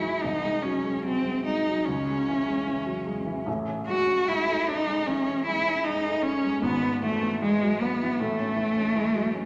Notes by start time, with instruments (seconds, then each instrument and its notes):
Already playing: grand piano G#2 E3 F#3 G#3, cello E4
0.02 grand piano E3
0.21 grand piano C2, cello D#4
0.44 grand piano G#3
0.63 grand piano F#3, cello C#4
0.85 grand piano G#3
1.05 grand piano F#3, cello C4
1.26 grand piano G#3
1.45 grand piano G#3, cello D#4
1.69 grand piano F#3
1.85 grand piano C#2, cello C#4
2.09 grand piano G#3
2.29 grand piano E3
2.47 grand piano G#3
2.67 grand piano E3
2.86 grand piano F#3
3.06 grand piano G#3
3.26 grand piano E3
3.46 grand piano A1 A2
3.68 grand piano C#4
3.87 grand piano G#3, cello F#4
4.07 grand piano C#4
4.26 grand piano G#3, cello E4
4.48 grand piano A3
4.67 grand piano C#4, cello D#4
4.87 grand piano G#3
5.06 grand piano E3, cello C#4
5.27 grand piano C#4
5.46 grand piano G#3, cello E4
5.67 grand piano C#4
5.84 grand piano G#3, cello D#4
6.07 grand piano A3
6.22 cello C#4, grand piano C#4
6.44 grand piano G#3
6.61 grand piano G#1 G#2, cello B3
6.83 grand piano B3
7.02 grand piano E3, cello A3
7.22 grand piano B3
7.42 grand piano E3, cello G#3
7.62 grand piano F#3
7.81 cello B3, grand piano B3
8.03 grand piano E3
8.20 grand piano A2, cello A3
8.40 grand piano C#4
8.56 grand piano E3
8.77 grand piano C#4
8.96 grand piano E3
9.14 grand piano F#3
9.34 grand piano C#4